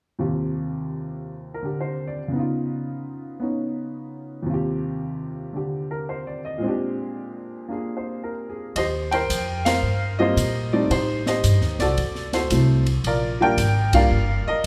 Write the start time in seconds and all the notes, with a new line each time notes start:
0.19 D#2 C3 F4 G4
1.54 A#4
1.62 D3 G4
1.81 C5
2.07 D5
2.28 C#3 B3
2.35 D#4 F4
3.40 B3 C#4 D#4
4.42 D#2 C3
4.50 F4 G4
5.53 D3 G4
5.91 A#4
6.09 C5
6.27 D5
6.45 D#5
6.58 A#2 G#3
6.63 C4 D4
6.68 G4
7.69 A#3 D4 F4 G#4
7.97 C5
8.24 A#4
8.49 G#4
8.76 D#2 G4 C5 D#5, kick, ride
9.11 A#4 C5 G5, ride
9.30 F2, kick, hi-hat pedal, ride
9.65 A#4 C5 F5, snare, ride
9.83 G2
10.19 G3 A#3 C4 F4 G4 C5 D#5
10.36 A#2, kick, hi-hat pedal, ride
10.73 G3 A3 C4 D#4 D5
10.90 A2 D#4 G4 C5, kick, ride
11.26 G4 C5 D#5, snare
11.43 G2, kick, hi-hat pedal, ride
11.61 D#2, snare
11.79 C2 F#4 A4 D5, snare, ride
11.97 D2, kick, ride
12.15 snare
12.33 F#4 A4 C5, snare, ride
12.50 C2 F#3 A3 C4 E4, kick, hi-hat pedal, ride
12.86 ride
13.04 A#1 F4 A#4 D5, kick, ride
13.41 G3 A#3 D4 F4 A#4 D5 G5
13.57 G#1, kick, hi-hat pedal, ride
13.93 G3 A#3 D4 F4 A#4 D5 F5, kick, ride
14.11 G1
14.47 A#4 D#5, muted upright bass stroke